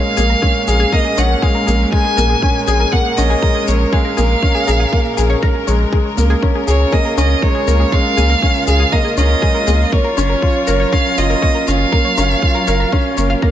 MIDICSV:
0, 0, Header, 1, 7, 480
1, 0, Start_track
1, 0, Key_signature, -5, "minor"
1, 0, Tempo, 500000
1, 1850, Time_signature, 4, 2, 24, 8
1, 12970, End_track
2, 0, Start_track
2, 0, Title_t, "Violin"
2, 0, Program_c, 0, 40
2, 0, Note_on_c, 0, 77, 110
2, 649, Note_off_c, 0, 77, 0
2, 655, Note_on_c, 0, 77, 107
2, 895, Note_on_c, 0, 75, 105
2, 910, Note_off_c, 0, 77, 0
2, 1133, Note_on_c, 0, 78, 98
2, 1147, Note_off_c, 0, 75, 0
2, 1373, Note_on_c, 0, 77, 95
2, 1388, Note_off_c, 0, 78, 0
2, 1843, Note_off_c, 0, 77, 0
2, 1849, Note_on_c, 0, 80, 120
2, 2531, Note_off_c, 0, 80, 0
2, 2564, Note_on_c, 0, 80, 115
2, 2805, Note_on_c, 0, 78, 110
2, 2819, Note_off_c, 0, 80, 0
2, 3044, Note_on_c, 0, 75, 105
2, 3059, Note_off_c, 0, 78, 0
2, 3529, Note_on_c, 0, 73, 92
2, 3543, Note_off_c, 0, 75, 0
2, 3767, Note_on_c, 0, 77, 99
2, 3781, Note_off_c, 0, 73, 0
2, 5208, Note_off_c, 0, 77, 0
2, 6412, Note_on_c, 0, 73, 101
2, 6654, Note_on_c, 0, 75, 104
2, 6669, Note_off_c, 0, 73, 0
2, 6885, Note_off_c, 0, 75, 0
2, 6890, Note_on_c, 0, 75, 102
2, 7132, Note_on_c, 0, 73, 104
2, 7147, Note_off_c, 0, 75, 0
2, 7609, Note_on_c, 0, 77, 123
2, 7624, Note_off_c, 0, 73, 0
2, 8324, Note_off_c, 0, 77, 0
2, 8330, Note_on_c, 0, 77, 114
2, 8569, Note_on_c, 0, 75, 111
2, 8583, Note_off_c, 0, 77, 0
2, 8804, Note_off_c, 0, 75, 0
2, 8810, Note_on_c, 0, 75, 109
2, 9528, Note_on_c, 0, 73, 106
2, 9543, Note_off_c, 0, 75, 0
2, 10490, Note_on_c, 0, 77, 104
2, 10504, Note_off_c, 0, 73, 0
2, 10731, Note_on_c, 0, 75, 99
2, 10745, Note_off_c, 0, 77, 0
2, 11210, Note_on_c, 0, 77, 101
2, 11224, Note_off_c, 0, 75, 0
2, 12890, Note_off_c, 0, 77, 0
2, 12970, End_track
3, 0, Start_track
3, 0, Title_t, "Synth arpeggio sound"
3, 0, Program_c, 1, 84
3, 164, Note_on_c, 1, 68, 94
3, 214, Note_off_c, 1, 68, 0
3, 286, Note_on_c, 1, 70, 78
3, 366, Note_off_c, 1, 70, 0
3, 403, Note_on_c, 1, 68, 86
3, 520, Note_off_c, 1, 68, 0
3, 766, Note_on_c, 1, 68, 106
3, 815, Note_off_c, 1, 68, 0
3, 887, Note_on_c, 1, 70, 85
3, 966, Note_off_c, 1, 70, 0
3, 1006, Note_on_c, 1, 68, 81
3, 1122, Note_off_c, 1, 68, 0
3, 1366, Note_on_c, 1, 68, 92
3, 1414, Note_off_c, 1, 68, 0
3, 1485, Note_on_c, 1, 70, 77
3, 1565, Note_off_c, 1, 70, 0
3, 1603, Note_on_c, 1, 68, 69
3, 1720, Note_off_c, 1, 68, 0
3, 1964, Note_on_c, 1, 68, 100
3, 2014, Note_off_c, 1, 68, 0
3, 2085, Note_on_c, 1, 70, 76
3, 2165, Note_off_c, 1, 70, 0
3, 2205, Note_on_c, 1, 68, 79
3, 2321, Note_off_c, 1, 68, 0
3, 2568, Note_on_c, 1, 68, 97
3, 2616, Note_off_c, 1, 68, 0
3, 2688, Note_on_c, 1, 70, 77
3, 2766, Note_off_c, 1, 70, 0
3, 2810, Note_on_c, 1, 68, 81
3, 2924, Note_off_c, 1, 68, 0
3, 3169, Note_on_c, 1, 68, 97
3, 3216, Note_off_c, 1, 68, 0
3, 3286, Note_on_c, 1, 70, 80
3, 3366, Note_off_c, 1, 70, 0
3, 3405, Note_on_c, 1, 68, 79
3, 3522, Note_off_c, 1, 68, 0
3, 3768, Note_on_c, 1, 68, 101
3, 3815, Note_off_c, 1, 68, 0
3, 3886, Note_on_c, 1, 70, 72
3, 3965, Note_off_c, 1, 70, 0
3, 4004, Note_on_c, 1, 68, 78
3, 4121, Note_off_c, 1, 68, 0
3, 4367, Note_on_c, 1, 68, 99
3, 4415, Note_off_c, 1, 68, 0
3, 4486, Note_on_c, 1, 70, 76
3, 4565, Note_off_c, 1, 70, 0
3, 4606, Note_on_c, 1, 68, 75
3, 4722, Note_off_c, 1, 68, 0
3, 4965, Note_on_c, 1, 68, 77
3, 5081, Note_off_c, 1, 68, 0
3, 5086, Note_on_c, 1, 73, 98
3, 5166, Note_off_c, 1, 73, 0
3, 5208, Note_on_c, 1, 82, 98
3, 5286, Note_off_c, 1, 82, 0
3, 5447, Note_on_c, 1, 73, 69
3, 5562, Note_off_c, 1, 73, 0
3, 5688, Note_on_c, 1, 68, 82
3, 5803, Note_off_c, 1, 68, 0
3, 6049, Note_on_c, 1, 68, 102
3, 6096, Note_off_c, 1, 68, 0
3, 6170, Note_on_c, 1, 70, 81
3, 6247, Note_off_c, 1, 70, 0
3, 6291, Note_on_c, 1, 68, 78
3, 6404, Note_off_c, 1, 68, 0
3, 6650, Note_on_c, 1, 68, 107
3, 6696, Note_off_c, 1, 68, 0
3, 6770, Note_on_c, 1, 70, 77
3, 6847, Note_off_c, 1, 70, 0
3, 6889, Note_on_c, 1, 68, 76
3, 7003, Note_off_c, 1, 68, 0
3, 7246, Note_on_c, 1, 68, 101
3, 7294, Note_off_c, 1, 68, 0
3, 7368, Note_on_c, 1, 70, 76
3, 7446, Note_off_c, 1, 70, 0
3, 7487, Note_on_c, 1, 68, 71
3, 7603, Note_off_c, 1, 68, 0
3, 7846, Note_on_c, 1, 68, 100
3, 7894, Note_off_c, 1, 68, 0
3, 7966, Note_on_c, 1, 70, 78
3, 8045, Note_off_c, 1, 70, 0
3, 8086, Note_on_c, 1, 68, 86
3, 8202, Note_off_c, 1, 68, 0
3, 8444, Note_on_c, 1, 68, 99
3, 8493, Note_off_c, 1, 68, 0
3, 8567, Note_on_c, 1, 70, 80
3, 8646, Note_off_c, 1, 70, 0
3, 8685, Note_on_c, 1, 68, 80
3, 8802, Note_off_c, 1, 68, 0
3, 9044, Note_on_c, 1, 68, 105
3, 9093, Note_off_c, 1, 68, 0
3, 9165, Note_on_c, 1, 70, 79
3, 9245, Note_off_c, 1, 70, 0
3, 9285, Note_on_c, 1, 68, 75
3, 9401, Note_off_c, 1, 68, 0
3, 9643, Note_on_c, 1, 70, 95
3, 9693, Note_off_c, 1, 70, 0
3, 9763, Note_on_c, 1, 73, 82
3, 9844, Note_off_c, 1, 73, 0
3, 9884, Note_on_c, 1, 70, 78
3, 10001, Note_off_c, 1, 70, 0
3, 10245, Note_on_c, 1, 70, 101
3, 10294, Note_off_c, 1, 70, 0
3, 10367, Note_on_c, 1, 73, 79
3, 10446, Note_off_c, 1, 73, 0
3, 10488, Note_on_c, 1, 70, 82
3, 10603, Note_off_c, 1, 70, 0
3, 10847, Note_on_c, 1, 70, 107
3, 10895, Note_off_c, 1, 70, 0
3, 10966, Note_on_c, 1, 73, 83
3, 11045, Note_off_c, 1, 73, 0
3, 11085, Note_on_c, 1, 70, 79
3, 11201, Note_off_c, 1, 70, 0
3, 11446, Note_on_c, 1, 70, 98
3, 11494, Note_off_c, 1, 70, 0
3, 11567, Note_on_c, 1, 73, 76
3, 11646, Note_off_c, 1, 73, 0
3, 11688, Note_on_c, 1, 70, 74
3, 11803, Note_off_c, 1, 70, 0
3, 12045, Note_on_c, 1, 70, 101
3, 12094, Note_off_c, 1, 70, 0
3, 12167, Note_on_c, 1, 73, 77
3, 12246, Note_off_c, 1, 73, 0
3, 12288, Note_on_c, 1, 70, 76
3, 12403, Note_off_c, 1, 70, 0
3, 12647, Note_on_c, 1, 73, 77
3, 12726, Note_off_c, 1, 73, 0
3, 12767, Note_on_c, 1, 77, 96
3, 12846, Note_off_c, 1, 77, 0
3, 12888, Note_on_c, 1, 82, 74
3, 12966, Note_off_c, 1, 82, 0
3, 12970, End_track
4, 0, Start_track
4, 0, Title_t, "Felt piano"
4, 0, Program_c, 2, 0
4, 0, Control_c, 2, 64, 127
4, 0, Note_on_c, 2, 56, 77
4, 0, Note_on_c, 2, 58, 74
4, 0, Note_on_c, 2, 61, 91
4, 0, Note_on_c, 2, 68, 98
4, 168, Note_off_c, 2, 58, 0
4, 168, Note_on_c, 2, 58, 91
4, 306, Note_off_c, 2, 58, 0
4, 408, Note_off_c, 2, 61, 0
4, 408, Note_on_c, 2, 61, 68
4, 546, Note_off_c, 2, 61, 0
4, 647, Note_off_c, 2, 68, 0
4, 647, Note_on_c, 2, 68, 107
4, 877, Note_off_c, 2, 68, 0
4, 886, Note_on_c, 2, 58, 106
4, 1116, Note_off_c, 2, 58, 0
4, 1127, Note_on_c, 2, 61, 92
4, 1356, Note_off_c, 2, 61, 0
4, 1371, Note_off_c, 2, 56, 0
4, 1371, Note_on_c, 2, 56, 76
4, 1599, Note_off_c, 2, 56, 0
4, 1611, Note_on_c, 2, 58, 77
4, 1747, Note_off_c, 2, 58, 0
4, 1852, Note_on_c, 2, 56, 82
4, 1988, Note_off_c, 2, 56, 0
4, 2091, Note_on_c, 2, 58, 104
4, 2227, Note_off_c, 2, 58, 0
4, 2333, Note_on_c, 2, 61, 78
4, 2468, Note_off_c, 2, 61, 0
4, 2575, Note_on_c, 2, 68, 104
4, 2801, Note_off_c, 2, 68, 0
4, 2812, Note_on_c, 2, 58, 108
4, 3039, Note_off_c, 2, 58, 0
4, 3051, Note_on_c, 2, 61, 94
4, 3278, Note_off_c, 2, 61, 0
4, 3291, Note_on_c, 2, 56, 73
4, 3518, Note_off_c, 2, 56, 0
4, 3530, Note_on_c, 2, 58, 72
4, 3667, Note_off_c, 2, 58, 0
4, 3771, Note_on_c, 2, 56, 78
4, 3907, Note_off_c, 2, 56, 0
4, 4012, Note_on_c, 2, 58, 97
4, 4148, Note_off_c, 2, 58, 0
4, 4250, Note_on_c, 2, 61, 74
4, 4387, Note_off_c, 2, 61, 0
4, 4488, Note_on_c, 2, 68, 103
4, 4717, Note_off_c, 2, 68, 0
4, 4727, Note_on_c, 2, 58, 95
4, 4956, Note_off_c, 2, 58, 0
4, 4970, Note_on_c, 2, 68, 71
4, 5198, Note_off_c, 2, 68, 0
4, 5211, Note_on_c, 2, 70, 100
4, 5439, Note_off_c, 2, 70, 0
4, 5447, Note_on_c, 2, 56, 75
4, 5672, Note_off_c, 2, 56, 0
4, 5687, Note_on_c, 2, 56, 80
4, 5700, Control_c, 2, 64, 0
4, 5825, Note_off_c, 2, 56, 0
4, 5883, Control_c, 2, 64, 127
4, 5924, Note_on_c, 2, 58, 97
4, 6064, Note_off_c, 2, 58, 0
4, 6166, Note_on_c, 2, 61, 72
4, 6304, Note_off_c, 2, 61, 0
4, 6404, Note_on_c, 2, 68, 97
4, 6635, Note_off_c, 2, 68, 0
4, 6647, Note_on_c, 2, 58, 98
4, 6876, Note_off_c, 2, 58, 0
4, 6889, Note_on_c, 2, 61, 97
4, 7117, Note_off_c, 2, 61, 0
4, 7128, Note_on_c, 2, 56, 73
4, 7357, Note_off_c, 2, 56, 0
4, 7366, Note_on_c, 2, 58, 80
4, 7505, Note_off_c, 2, 58, 0
4, 7611, Note_on_c, 2, 56, 87
4, 7747, Note_off_c, 2, 56, 0
4, 7847, Note_on_c, 2, 58, 98
4, 7985, Note_off_c, 2, 58, 0
4, 8090, Note_on_c, 2, 61, 71
4, 8227, Note_off_c, 2, 61, 0
4, 8325, Note_on_c, 2, 68, 104
4, 8556, Note_off_c, 2, 68, 0
4, 8566, Note_on_c, 2, 58, 108
4, 8796, Note_off_c, 2, 58, 0
4, 8805, Note_on_c, 2, 61, 96
4, 9035, Note_off_c, 2, 61, 0
4, 9049, Note_on_c, 2, 56, 78
4, 9277, Note_off_c, 2, 56, 0
4, 9286, Note_on_c, 2, 58, 83
4, 9425, Note_off_c, 2, 58, 0
4, 9527, Note_on_c, 2, 58, 88
4, 9541, Control_c, 2, 64, 0
4, 9665, Note_off_c, 2, 58, 0
4, 9725, Control_c, 2, 64, 127
4, 9768, Note_on_c, 2, 61, 96
4, 9906, Note_off_c, 2, 61, 0
4, 10010, Note_on_c, 2, 65, 76
4, 10147, Note_off_c, 2, 65, 0
4, 10248, Note_on_c, 2, 70, 102
4, 10477, Note_off_c, 2, 70, 0
4, 10488, Note_on_c, 2, 61, 108
4, 10717, Note_off_c, 2, 61, 0
4, 10729, Note_on_c, 2, 65, 96
4, 10957, Note_off_c, 2, 65, 0
4, 10970, Note_on_c, 2, 58, 71
4, 11198, Note_off_c, 2, 58, 0
4, 11209, Note_on_c, 2, 61, 75
4, 11346, Note_off_c, 2, 61, 0
4, 11450, Note_on_c, 2, 58, 86
4, 11587, Note_off_c, 2, 58, 0
4, 11688, Note_on_c, 2, 61, 101
4, 11826, Note_off_c, 2, 61, 0
4, 11928, Note_on_c, 2, 65, 69
4, 12066, Note_off_c, 2, 65, 0
4, 12169, Note_on_c, 2, 70, 103
4, 12397, Note_off_c, 2, 70, 0
4, 12406, Note_on_c, 2, 61, 103
4, 12636, Note_off_c, 2, 61, 0
4, 12646, Note_on_c, 2, 58, 67
4, 12872, Note_off_c, 2, 58, 0
4, 12886, Note_on_c, 2, 58, 92
4, 12970, Note_off_c, 2, 58, 0
4, 12970, End_track
5, 0, Start_track
5, 0, Title_t, "String section"
5, 0, Program_c, 3, 48
5, 0, Note_on_c, 3, 46, 81
5, 0, Note_on_c, 3, 56, 82
5, 0, Note_on_c, 3, 61, 71
5, 191, Note_on_c, 3, 70, 88
5, 5686, Note_on_c, 3, 49, 79
5, 5688, Note_off_c, 3, 56, 0
5, 5690, Note_off_c, 3, 46, 0
5, 6536, Note_on_c, 3, 65, 90
5, 9528, Note_off_c, 3, 49, 0
5, 9529, Note_on_c, 3, 54, 84
5, 12970, Note_off_c, 3, 54, 0
5, 12970, Note_off_c, 3, 61, 0
5, 12970, Note_off_c, 3, 65, 0
5, 12970, Note_off_c, 3, 70, 0
5, 12970, End_track
6, 0, Start_track
6, 0, Title_t, "Sub bass"
6, 0, Program_c, 4, 38
6, 169, Note_on_c, 4, 34, 100
6, 335, Note_off_c, 4, 34, 0
6, 650, Note_on_c, 4, 34, 91
6, 816, Note_off_c, 4, 34, 0
6, 1129, Note_on_c, 4, 34, 85
6, 1296, Note_off_c, 4, 34, 0
6, 1608, Note_on_c, 4, 34, 103
6, 1775, Note_off_c, 4, 34, 0
6, 2086, Note_on_c, 4, 34, 98
6, 2254, Note_off_c, 4, 34, 0
6, 2568, Note_on_c, 4, 34, 99
6, 2735, Note_off_c, 4, 34, 0
6, 3051, Note_on_c, 4, 34, 86
6, 3217, Note_off_c, 4, 34, 0
6, 3532, Note_on_c, 4, 34, 96
6, 3697, Note_off_c, 4, 34, 0
6, 4013, Note_on_c, 4, 34, 103
6, 4178, Note_off_c, 4, 34, 0
6, 4493, Note_on_c, 4, 34, 90
6, 4658, Note_off_c, 4, 34, 0
6, 4973, Note_on_c, 4, 34, 87
6, 5137, Note_off_c, 4, 34, 0
6, 5451, Note_on_c, 4, 34, 101
6, 5617, Note_off_c, 4, 34, 0
6, 5928, Note_on_c, 4, 37, 100
6, 6095, Note_off_c, 4, 37, 0
6, 6408, Note_on_c, 4, 37, 89
6, 6575, Note_off_c, 4, 37, 0
6, 6886, Note_on_c, 4, 37, 88
6, 7054, Note_off_c, 4, 37, 0
6, 7366, Note_on_c, 4, 37, 102
6, 7534, Note_off_c, 4, 37, 0
6, 7847, Note_on_c, 4, 37, 100
6, 8015, Note_off_c, 4, 37, 0
6, 8326, Note_on_c, 4, 37, 92
6, 8494, Note_off_c, 4, 37, 0
6, 8805, Note_on_c, 4, 37, 88
6, 8974, Note_off_c, 4, 37, 0
6, 9285, Note_on_c, 4, 37, 95
6, 9454, Note_off_c, 4, 37, 0
6, 9768, Note_on_c, 4, 30, 109
6, 9935, Note_off_c, 4, 30, 0
6, 10250, Note_on_c, 4, 30, 90
6, 10416, Note_off_c, 4, 30, 0
6, 10730, Note_on_c, 4, 30, 81
6, 10896, Note_off_c, 4, 30, 0
6, 11211, Note_on_c, 4, 30, 99
6, 11376, Note_off_c, 4, 30, 0
6, 11690, Note_on_c, 4, 30, 94
6, 11856, Note_off_c, 4, 30, 0
6, 12169, Note_on_c, 4, 30, 100
6, 12335, Note_off_c, 4, 30, 0
6, 12648, Note_on_c, 4, 30, 89
6, 12815, Note_off_c, 4, 30, 0
6, 12970, End_track
7, 0, Start_track
7, 0, Title_t, "Drums"
7, 166, Note_on_c, 9, 82, 65
7, 262, Note_off_c, 9, 82, 0
7, 407, Note_on_c, 9, 36, 104
7, 503, Note_off_c, 9, 36, 0
7, 648, Note_on_c, 9, 82, 62
7, 744, Note_off_c, 9, 82, 0
7, 887, Note_on_c, 9, 36, 99
7, 983, Note_off_c, 9, 36, 0
7, 1128, Note_on_c, 9, 82, 63
7, 1224, Note_off_c, 9, 82, 0
7, 1367, Note_on_c, 9, 36, 113
7, 1463, Note_off_c, 9, 36, 0
7, 1611, Note_on_c, 9, 82, 60
7, 1707, Note_off_c, 9, 82, 0
7, 1847, Note_on_c, 9, 36, 118
7, 1943, Note_off_c, 9, 36, 0
7, 2092, Note_on_c, 9, 82, 70
7, 2188, Note_off_c, 9, 82, 0
7, 2327, Note_on_c, 9, 36, 111
7, 2423, Note_off_c, 9, 36, 0
7, 2569, Note_on_c, 9, 82, 63
7, 2665, Note_off_c, 9, 82, 0
7, 2807, Note_on_c, 9, 36, 105
7, 2903, Note_off_c, 9, 36, 0
7, 3048, Note_on_c, 9, 82, 64
7, 3144, Note_off_c, 9, 82, 0
7, 3288, Note_on_c, 9, 36, 107
7, 3384, Note_off_c, 9, 36, 0
7, 3530, Note_on_c, 9, 82, 61
7, 3626, Note_off_c, 9, 82, 0
7, 3769, Note_on_c, 9, 36, 114
7, 3865, Note_off_c, 9, 36, 0
7, 4010, Note_on_c, 9, 82, 61
7, 4106, Note_off_c, 9, 82, 0
7, 4248, Note_on_c, 9, 36, 106
7, 4344, Note_off_c, 9, 36, 0
7, 4489, Note_on_c, 9, 82, 63
7, 4585, Note_off_c, 9, 82, 0
7, 4729, Note_on_c, 9, 36, 96
7, 4825, Note_off_c, 9, 36, 0
7, 4970, Note_on_c, 9, 82, 61
7, 5066, Note_off_c, 9, 82, 0
7, 5209, Note_on_c, 9, 36, 101
7, 5305, Note_off_c, 9, 36, 0
7, 5450, Note_on_c, 9, 82, 61
7, 5546, Note_off_c, 9, 82, 0
7, 5688, Note_on_c, 9, 36, 110
7, 5784, Note_off_c, 9, 36, 0
7, 5931, Note_on_c, 9, 82, 65
7, 6027, Note_off_c, 9, 82, 0
7, 6168, Note_on_c, 9, 36, 97
7, 6264, Note_off_c, 9, 36, 0
7, 6411, Note_on_c, 9, 82, 60
7, 6507, Note_off_c, 9, 82, 0
7, 6648, Note_on_c, 9, 36, 99
7, 6744, Note_off_c, 9, 36, 0
7, 6891, Note_on_c, 9, 82, 57
7, 6987, Note_off_c, 9, 82, 0
7, 7127, Note_on_c, 9, 36, 103
7, 7223, Note_off_c, 9, 36, 0
7, 7369, Note_on_c, 9, 82, 56
7, 7465, Note_off_c, 9, 82, 0
7, 7607, Note_on_c, 9, 36, 107
7, 7703, Note_off_c, 9, 36, 0
7, 7850, Note_on_c, 9, 82, 58
7, 7946, Note_off_c, 9, 82, 0
7, 8087, Note_on_c, 9, 36, 99
7, 8183, Note_off_c, 9, 36, 0
7, 8326, Note_on_c, 9, 82, 63
7, 8422, Note_off_c, 9, 82, 0
7, 8567, Note_on_c, 9, 36, 101
7, 8663, Note_off_c, 9, 36, 0
7, 8805, Note_on_c, 9, 82, 60
7, 8901, Note_off_c, 9, 82, 0
7, 9047, Note_on_c, 9, 36, 97
7, 9143, Note_off_c, 9, 36, 0
7, 9285, Note_on_c, 9, 82, 59
7, 9381, Note_off_c, 9, 82, 0
7, 9527, Note_on_c, 9, 36, 110
7, 9623, Note_off_c, 9, 36, 0
7, 9768, Note_on_c, 9, 82, 60
7, 9864, Note_off_c, 9, 82, 0
7, 10007, Note_on_c, 9, 36, 93
7, 10103, Note_off_c, 9, 36, 0
7, 10246, Note_on_c, 9, 82, 58
7, 10342, Note_off_c, 9, 82, 0
7, 10488, Note_on_c, 9, 36, 95
7, 10584, Note_off_c, 9, 36, 0
7, 10728, Note_on_c, 9, 82, 58
7, 10824, Note_off_c, 9, 82, 0
7, 10968, Note_on_c, 9, 36, 95
7, 11064, Note_off_c, 9, 36, 0
7, 11209, Note_on_c, 9, 82, 57
7, 11305, Note_off_c, 9, 82, 0
7, 11448, Note_on_c, 9, 36, 110
7, 11544, Note_off_c, 9, 36, 0
7, 11688, Note_on_c, 9, 82, 64
7, 11784, Note_off_c, 9, 82, 0
7, 11927, Note_on_c, 9, 36, 96
7, 12023, Note_off_c, 9, 36, 0
7, 12167, Note_on_c, 9, 82, 60
7, 12263, Note_off_c, 9, 82, 0
7, 12407, Note_on_c, 9, 36, 92
7, 12503, Note_off_c, 9, 36, 0
7, 12647, Note_on_c, 9, 82, 58
7, 12743, Note_off_c, 9, 82, 0
7, 12887, Note_on_c, 9, 36, 99
7, 12970, Note_off_c, 9, 36, 0
7, 12970, End_track
0, 0, End_of_file